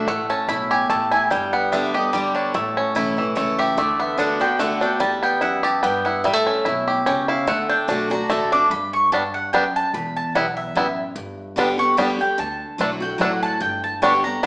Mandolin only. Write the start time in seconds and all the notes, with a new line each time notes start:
0.08 F#5
0.30 A5
0.49 B5
0.71 G#5
0.90 A5
1.12 G#5
1.30 G5
1.53 F#5
1.72 E5
1.94 D#5
2.13 D5
2.34 C#5
3.36 C#5
3.59 E5
3.78 D5
4.00 E5
4.19 F#5
4.41 G5
4.60 F#5
4.82 G5
5.01 A5
5.23 G5
5.42 F#5
5.64 A5
5.83 G5
6.05 F#5
6.24 E5
7.07 G5
7.29 F5
7.49 F#5
7.70 G5
7.89 A5
8.11 A#5
8.31 A5
8.52 D6
8.71 B5
8.93 C#6
9.12 A5
9.34 F#5
9.53 G5
9.76 A5
9.94 B5
10.16 A5
10.35 F#5
10.57 E5
11.79 C#6
11.98 B5
12.21 G5
12.39 A5
13.02 G5
13.21 F#5
13.43 A5
13.61 G5
13.84 A5
14.02 C#6
14.24 A#5